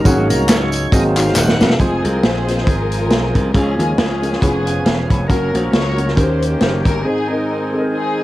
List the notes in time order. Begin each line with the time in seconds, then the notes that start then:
Already playing: C#4 D#4
0.04 G#1 G#2 F#3 G#3 A#3 C4 C#4 D#4 F#4 G#4, kick, closed hi-hat, tambourine
0.09 C#4
0.29 C2 A#4, closed hi-hat, tambourine
0.49 C#2 C#5, snare, clap, closed hi-hat, tambourine
0.72 closed hi-hat, tambourine
0.91 G#1 G#2 F#3 G#3 A#3 C4 D#4 F#4 G#4 D#5, kick, closed hi-hat, tambourine
1.16 C4 D#4 F#4 G#4 F5, clap, closed hi-hat, tambourine
1.36 D#1 F#5, snare, clap, tambourine
1.48 snare
1.59 E1 C4 D#4 F#4 A#4, snare, tambourine
1.70 snare
1.79 F1 F3 G#3 C4 F4 G#4, kick, closed hi-hat
2.03 C2 G#3 C4 F4 G#4 A#4, closed hi-hat
2.23 A#1 F4 G#4 C5, snare, closed hi-hat
2.47 G#3 C4 F4 G#4, snare, closed hi-hat
2.58 snare
2.67 G#1 F4 A#4, kick, closed hi-hat
2.92 closed hi-hat
3.10 B1, snare, closed hi-hat
3.35 C2, kick, closed hi-hat
3.54 C#2 C#3 F3 G#3 C#4 F4 G4 G#4, kick, closed hi-hat
3.59 G#4
3.78 D#2 G#3 C#4 F4 G#4 A#4, closed hi-hat
3.98 C#2 C#4 F4 G#4, snare, closed hi-hat
4.22 G#3 C#4 F4 A#4, closed hi-hat
4.33 snare
4.41 F1 F3 B3 C#4 E4 G#4, kick, closed hi-hat
4.47 F4
4.65 F5 G#5, closed hi-hat
4.85 E1 F5 G#5, snare, closed hi-hat
5.09 F1 C#5 B5, kick, closed hi-hat
5.28 F#1 F#3 A#3 C#4 F#4 A#4, kick, closed hi-hat
5.53 A#1 A#3 C#4 F#4 C5, closed hi-hat
5.73 C#2 F#4 A#4 C#5, snare, closed hi-hat
5.97 A#3 C#4 F#4 C#5, closed hi-hat
6.08 snare
6.16 D#2 D#3 A#3 C#4 D#4 G4 A#4 C5, kick, closed hi-hat
6.42 closed hi-hat
6.61 F#1, snare, closed hi-hat
6.85 G1 A#4, kick, closed hi-hat
7.04 G#2 D#3 G#3 C4 D#4 G#4 C5
7.28 C4 D#4 G#4 A#4 D#5
7.72 C4 D#4 G#4 A4
7.79 A#4
7.92 C4 D#4 G#4